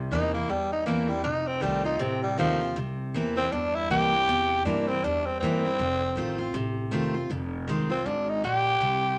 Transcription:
Already playing: steel-string acoustic guitar C3
0.11 upright bass E2, steel-string acoustic guitar E3 A#3 C4 E4, tenor saxophone D#4
0.34 tenor saxophone A#3, steel-string acoustic guitar C4 E4
0.49 upright bass E2, steel-string acoustic guitar G2, tenor saxophone G3
0.72 tenor saxophone D#4
0.86 upright bass E2, steel-string acoustic guitar E3 A#3 C4 E4, tenor saxophone A#3
1.08 tenor saxophone G3, steel-string acoustic guitar C4 E4
1.24 upright bass F1, steel-string acoustic guitar F2, tenor saxophone D#4
1.47 tenor saxophone C4
1.61 upright bass C2, steel-string acoustic guitar D#3 A3 C4 F4, tenor saxophone G3
1.84 steel-string acoustic guitar C4 F4, tenor saxophone D#4
1.99 upright bass A1, steel-string acoustic guitar C3, tenor saxophone C4
2.23 tenor saxophone G3
2.38 upright bass D#2, steel-string acoustic guitar D#3 A3 C4 F4, tenor saxophone F3
2.61 steel-string acoustic guitar C4 F4
2.76 upright bass C2, steel-string acoustic guitar C3
3.14 upright bass E2, steel-string acoustic guitar E3 A#3 C4 E4
3.36 tenor saxophone C4, steel-string acoustic guitar C4 E4
3.52 upright bass E2, steel-string acoustic guitar G2, tenor saxophone D4
3.75 tenor saxophone E4
3.90 upright bass C2, steel-string acoustic guitar E3 A#3 C4 E4, tenor saxophone G4
4.12 steel-string acoustic guitar C4 E4
4.28 upright bass E2, steel-string acoustic guitar C3
4.65 upright bass G2, steel-string acoustic guitar E3 A#3 C4 E4, tenor saxophone D4
4.88 tenor saxophone C4, steel-string acoustic guitar C4 E4
5.04 upright bass E2, steel-string acoustic guitar G2, tenor saxophone D4
5.26 tenor saxophone C4
5.40 upright bass G2, steel-string acoustic guitar E3 A#3 C4, tenor saxophone C4
5.44 steel-string acoustic guitar E4
5.65 steel-string acoustic guitar C4 E4
5.79 upright bass F1, steel-string acoustic guitar F2
6.15 upright bass A1, steel-string acoustic guitar D#3 A3 C4 F4
6.38 steel-string acoustic guitar C4 F4
6.54 upright bass A1, steel-string acoustic guitar C3
6.91 upright bass F1, steel-string acoustic guitar D#3 A3 C4 F4
7.14 steel-string acoustic guitar C4 F4
7.30 upright bass F1, steel-string acoustic guitar F2
7.67 upright bass C2, steel-string acoustic guitar D#3 G#3 C4 F4
7.89 tenor saxophone C4, steel-string acoustic guitar C4 F4
8.06 upright bass G#1, steel-string acoustic guitar G#2, tenor saxophone D4
8.29 tenor saxophone D#4
8.43 upright bass A#1, steel-string acoustic guitar A#2, tenor saxophone G4
8.81 upright bass C2, steel-string acoustic guitar C3

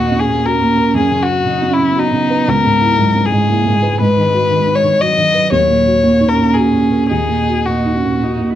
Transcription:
Already playing: felt piano D#2 A#2 F#4, cello D#4, violin F#4
0.11 felt piano C#4
0.20 cello C#4, violin G#4
0.28 felt piano A#2
0.45 felt piano F#4, violin A#4
0.61 felt piano A#2
0.78 felt piano A#4
0.94 felt piano F#2, violin G#4
1.11 felt piano C#3
1.23 violin F#4
1.28 felt piano F#4
1.45 felt piano C#3, cello D#4
1.62 felt piano C#4
1.70 cello C#4, violin E4
1.79 felt piano C#3
1.94 cello B3, felt piano F#4
1.99 violin D#4
2.12 felt piano C#3
2.30 felt piano B4
2.48 felt piano C#2, violin A#4
2.65 felt piano G#2
2.81 felt piano E4
2.98 felt piano G#2, cello F#3
3.15 felt piano C#4
3.24 cello G#3, violin G#4
3.32 felt piano G#2
3.49 cello A#3, felt piano E4
3.65 felt piano G#2
3.74 cello G#3
3.83 felt piano B4
4.00 felt piano G#2, violin B4
4.17 felt piano D#3
4.33 felt piano F#4
4.50 felt piano D#3
4.67 felt piano D#4
4.75 violin C#5
4.84 felt piano D#3
5.00 cello F#3, felt piano F#4, violin D#5
5.18 felt piano D#3
5.34 felt piano B4
5.52 felt piano D#2, violin C#5
5.68 felt piano A#2
5.86 felt piano F#4
6.03 felt piano A#2, cello A#3
6.20 felt piano D#4
6.29 cello C#4, violin A#4
6.38 felt piano A#2
6.54 felt piano F#4, violin G#4
6.73 felt piano A#2
6.91 felt piano A#4
7.09 felt piano D#2, cello D#4, violin G#4
7.28 felt piano A#2
7.48 felt piano F#4
7.65 felt piano A#2, cello D#4, violin F#4
7.86 felt piano D#4
7.95 cello C#4
8.05 felt piano A#2
8.22 cello D#4, felt piano F#4
8.40 felt piano A#2
8.50 cello E4

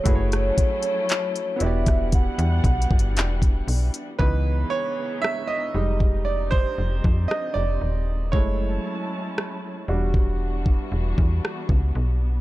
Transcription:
Already playing: soft synth lead C#5
0.03 fm bass F#1, string section F#3 A3 C#4 E4, grand piano A3 E4 F#4 G#4, kick, closed hi-hat
0.08 grand piano B4
0.15 grand piano C#5
0.32 cross-stick, closed hi-hat
0.58 kick, closed hi-hat
0.83 closed hi-hat
1.09 clap, closed hi-hat
1.36 closed hi-hat
1.56 grand piano B3 E4
1.60 fm bass E1, string section E3 G3 B3 D4 F#5, grand piano F#4 G4, soft synth lead E5, closed hi-hat
1.66 grand piano D5
1.86 kick, cross-stick, closed hi-hat
2.12 soft synth lead F#5, kick, closed hi-hat
2.38 fm bass E2, closed hi-hat
2.64 fm bass B1, kick, closed hi-hat
2.82 closed hi-hat
2.91 fm bass G1, kick
2.99 closed hi-hat
3.16 fm bass E1, clap, closed hi-hat
3.42 kick, closed hi-hat
3.68 fm bass B1, open hi-hat
3.94 closed hi-hat
4.19 fm bass C#2, string section C#3 E3 G#3 B3 D#4, grand piano E3 B3 D#4 B4, kick
4.70 grand piano C#5
5.22 grand piano E5, cross-stick
5.47 grand piano D#5
5.74 fm bass F1, string section F3 C4 G4, grand piano G3 G#3 D#4
6.00 kick
6.25 grand piano D5
6.51 grand piano C5, kick
6.78 fm bass F1
7.04 fm bass F2, kick
7.28 grand piano D#5, cross-stick
7.54 fm bass F1, grand piano D5
7.81 fm bass D#1
8.32 fm bass F#1, string section F#3 C#4 E4 A5, grand piano G#3 A3 E4 C#5, kick
9.38 cross-stick
9.88 fm bass E1, string section E3 G3 B3 D4 F#4, grand piano G3 D4 F#4
10.14 kick
10.66 kick
10.92 fm bass E1
11.18 fm bass E2, kick
11.45 cross-stick
11.69 fm bass C#2, kick
11.95 fm bass B1

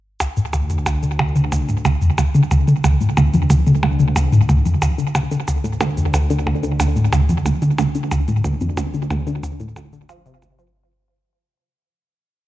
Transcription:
0.20 analog synth bass D2, synth arpeggio sound D2, percussion blips, shaker
0.37 synth arpeggio sound A2, shaker
0.53 synth arpeggio sound D2, percussion blips, shaker
0.70 synth arpeggio sound F2, shaker
0.86 synth arpeggio sound D2, percussion blips, shaker
1.03 synth arpeggio sound D3, shaker
1.19 synth arpeggio sound D2, percussion blips
1.36 synth arpeggio sound D3, shaker
1.52 synth arpeggio sound D2, percussion blips, shaker
1.69 synth arpeggio sound A2, shaker
1.85 synth arpeggio sound D2, percussion blips, shaker
2.02 synth arpeggio sound F2, shaker
2.18 synth arpeggio sound D2, percussion blips, shaker
2.35 synth arpeggio sound D3, shaker
2.51 synth arpeggio sound D2, percussion blips, shaker
2.68 synth arpeggio sound D3, shaker
2.84 synth arpeggio sound D2, percussion blips, shaker
3.01 synth arpeggio sound A2, shaker
3.17 synth arpeggio sound D2, percussion blips, shaker
3.34 synth arpeggio sound F2, shaker
3.50 synth arpeggio sound D2, percussion blips, shaker
3.67 synth arpeggio sound D3, shaker
3.83 synth arpeggio sound D2, percussion blips
4.00 synth arpeggio sound D3, shaker
4.16 synth arpeggio sound D2, percussion blips, shaker
4.32 synth arpeggio sound A2, shaker
4.49 synth arpeggio sound D2, percussion blips, shaker
4.65 synth arpeggio sound F2, shaker
4.82 synth arpeggio sound D2, percussion blips, shaker
4.98 synth arpeggio sound D3, shaker
5.15 synth arpeggio sound D2, percussion blips, shaker
5.31 synth arpeggio sound D3, shaker
5.48 synth arpeggio sound D2, analog synth bass D2, percussion blips, shaker
5.64 synth arpeggio sound A2, shaker
5.81 synth arpeggio sound D2, percussion blips, shaker
5.97 synth arpeggio sound F2, shaker
6.14 synth arpeggio sound D2, percussion blips, shaker
6.30 synth arpeggio sound D3, shaker
6.46 synth arpeggio sound D2, percussion blips
6.63 synth arpeggio sound D3, shaker
6.80 synth arpeggio sound D2, percussion blips, shaker
6.96 synth arpeggio sound A2, shaker
7.13 synth arpeggio sound D2, percussion blips, shaker
7.29 synth arpeggio sound F2, shaker
7.45 synth arpeggio sound D2, percussion blips, shaker
7.62 synth arpeggio sound D3, shaker
7.78 synth arpeggio sound D2, percussion blips, shaker
7.95 synth arpeggio sound D3, shaker
8.11 synth arpeggio sound D2, percussion blips, shaker
8.28 synth arpeggio sound A2, shaker
8.44 synth arpeggio sound D2, percussion blips, shaker
8.61 synth arpeggio sound F2, shaker
8.77 synth arpeggio sound D2, percussion blips, shaker
8.94 synth arpeggio sound D3, shaker
9.10 synth arpeggio sound D2, percussion blips, shaker
9.27 synth arpeggio sound D3, shaker
9.43 synth arpeggio sound D2, percussion blips, shaker
9.60 synth arpeggio sound A2, shaker
9.76 synth arpeggio sound D2, percussion blips, shaker
9.93 synth arpeggio sound D3, shaker
10.09 synth arpeggio sound F3, percussion blips, shaker
10.26 synth arpeggio sound C3, shaker
10.42 synth arpeggio sound D2, percussion blips, shaker
10.59 synth arpeggio sound F3, shaker

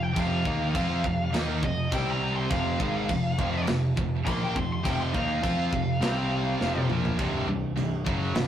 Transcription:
Already playing: picked electric bass F1, distorted electric guitar F2 C3
0.03 lead electric guitar G5
0.16 picked electric bass F1, distorted electric guitar F2 C3 F3, lead electric guitar F5, kick, crash
0.45 picked electric bass D#2, distorted electric guitar D#3 A#3 D#4, kick
0.75 picked electric bass F2, distorted electric guitar F3 C4 F4, kick, crash
1.04 picked electric bass F1, distorted electric guitar F2 C3, kick
1.33 picked electric bass D#2, distorted electric guitar D#3 A#3 D#4, snare, crash
1.63 picked electric bass F1, distorted electric guitar F2 C3, lead electric guitar D#5, kick
1.91 picked electric bass C2, distorted electric guitar C3 G3 C4, lead electric guitar G5, kick, crash
2.10 lead electric guitar A#5
2.36 lead electric guitar C6
2.50 picked electric bass F1, distorted electric guitar F2 C3 F3, lead electric guitar F5, kick, crash
2.80 picked electric bass G#1, distorted electric guitar G#2 D#3 G#3, kick
3.09 picked electric bass F1, distorted electric guitar F2 C3, kick, crash
3.38 picked electric bass F1, distorted electric guitar F2 C3 F3, kick
3.67 picked electric bass F1, distorted electric guitar F2 C3, snare, crash
3.96 picked electric bass F1, distorted electric guitar F2 C3, kick
4.25 picked electric bass A#1, distorted electric guitar A#2 F3 A#3, lead electric guitar C6, kick, crash
4.44 lead electric guitar G5
4.55 picked electric bass F1, distorted electric guitar F2 C3, lead electric guitar C6, kick
4.73 lead electric guitar C6
4.83 picked electric bass F1, distorted electric guitar F2 C3 F3, lead electric guitar G5, kick, crash
5.00 lead electric guitar C6
5.14 picked electric bass D#2, distorted electric guitar D#3 A#3 D#4, lead electric guitar F5, kick
5.43 picked electric bass F2, distorted electric guitar F3 C4 F4, kick, crash
5.72 picked electric bass F1, distorted electric guitar F2 C3, kick
6.00 picked electric bass C2, distorted electric guitar C3 G3 C4, snare, crash
6.59 picked electric bass F1, distorted electric guitar F2 C3 F3, snare
6.75 high tom
6.88 picked electric bass A#1, distorted electric guitar A#2 F3 A#3, mid tom
7.05 floor tom
7.18 picked electric bass C1, distorted electric guitar C2 G2 C3, kick, china
7.47 picked electric bass C1, distorted electric guitar C2 G2
7.76 picked electric bass C1, distorted electric guitar C2 G2, china
8.04 picked electric bass F#1, distorted electric guitar F#2 C#3 F#3, kick
8.34 picked electric bass C1, distorted electric guitar C2 G2, snare, china

